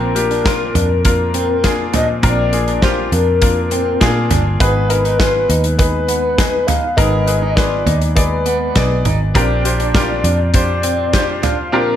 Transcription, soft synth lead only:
0.00 1.02 A#4 medium
1.06 1.90 A#4 medium
1.94 2.07 D#5 loud
2.24 2.84 D5 loud
2.83 3.12 C5 medium
3.13 4.27 A#4 medium
4.62 5.76 B4 medium
5.79 6.68 B4 medium
6.67 6.98 F5 loud
6.97 7.57 D#5 medium
7.55 8.15 D5 medium
8.16 9.01 B4 medium
9.35 10.50 D5 loud
10.54 11.45 D5 medium
11.43 11.72 F5 loud
11.73 11.96 A#4 loud

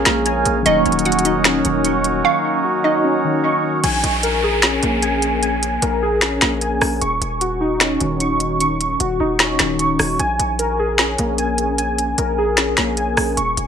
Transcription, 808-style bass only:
0.06 0.44 A#1 loud
0.46 0.65 A#1 loud
0.66 0.85 D#1 loud
0.86 1.62 D#1 loud
1.65 2.22 D#1 loud
3.84 4.03 A#1 loud
4.04 4.80 A#1 loud
4.83 5.78 A#1 loud
5.82 6.39 A#1 loud
6.42 6.80 A#1 loud
6.82 7.01 A#1 loud
7.01 7.21 D#1 loud
7.21 7.98 D#1 loud
8.01 8.96 D#1 loud
9.00 9.19 D#1 loud
9.20 9.58 D#1 loud
9.60 9.98 D#1 loud
9.99 10.19 D#1 loud
10.19 10.38 A#1 loud
10.39 11.16 A#1 loud
11.19 12.14 A#1 loud
12.18 12.75 A#1 loud
12.78 13.16 A#1 loud
13.17 13.36 A#1 loud
13.37 13.56 D#1 loud
13.57 13.67 D#1 loud

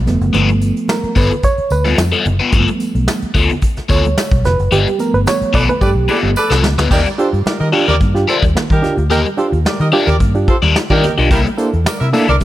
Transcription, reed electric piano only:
0.06 0.31 F3 soft
0.06 0.31 A3 soft
0.06 0.32 B3 medium
0.33 1.12 F3 medium
0.33 1.12 A3 medium
0.33 1.12 B3 medium
0.89 1.15 A#4 medium
1.17 1.45 B4 medium
1.44 1.72 C#5 loud
1.72 1.97 B4 loud
2.52 3.31 F3 medium
2.52 3.31 A3 medium
2.52 3.31 B3 medium
3.90 4.46 C#5 loud
4.45 4.73 B4 loud
4.72 5.00 G4 medium
4.98 6.86 F3 soft
4.98 6.86 A3 soft
4.98 6.87 B3 medium
4.98 5.14 A#4 medium
5.14 5.20 B4 medium
5.28 5.55 C#5 loud
5.55 5.61 D5 loud
5.69 5.81 B4 loud
5.81 6.32 G4 medium
6.91 7.04 D#3 medium
6.91 7.04 A#3 medium
7.18 7.31 D4 medium
7.18 7.31 F4 medium
7.18 7.31 G4 loud
7.33 7.38 F4 soft
7.33 7.38 G4 soft
7.72 7.86 D4 loud
7.72 7.86 F4 medium
7.72 7.86 G4 loud
8.00 8.13 D#3 medium
8.00 8.13 A#3 medium
8.14 8.26 D4 medium
8.14 8.26 F4 medium
8.14 8.26 G4 medium
8.55 8.68 D#3 medium
8.55 8.68 A#3 medium
8.82 8.96 D4 medium
8.82 8.96 F4 medium
8.82 8.96 G4 medium
8.98 9.03 F4 soft
8.98 9.03 G4 soft
9.11 9.23 D#3 medium
9.11 9.24 A#3 medium
9.37 9.51 D4 medium
9.37 9.51 F4 medium
9.37 9.51 G4 medium
9.53 9.58 F4 soft
9.53 9.58 G4 soft
9.93 10.06 D4 medium
9.93 10.06 F4 medium
9.93 10.06 G4 loud
10.20 10.33 D#3 medium
10.20 10.33 A#3 medium
10.35 10.47 D4 medium
10.35 10.47 F4 medium
10.35 10.46 G4 medium
10.48 10.54 F4 soft
10.48 10.54 G4 medium
10.90 11.02 D4 medium
10.90 11.02 F4 medium
10.90 11.02 G4 medium
11.03 11.16 D#3 medium
11.03 11.16 A#3 medium
11.17 11.29 D4 medium
11.17 11.29 F4 medium
11.17 11.29 G4 medium
11.31 11.44 C3 medium
11.31 11.44 G3 medium
11.58 11.71 A#3 medium
11.58 11.71 D4 medium
11.58 11.71 E4 medium
11.58 11.71 A4 medium
11.73 11.78 E4 soft
11.73 11.78 A4 soft
12.13 12.26 A#3 loud
12.13 12.26 D4 loud
12.13 12.26 E4 medium
12.13 12.27 A4 loud
12.41 12.44 G3 medium

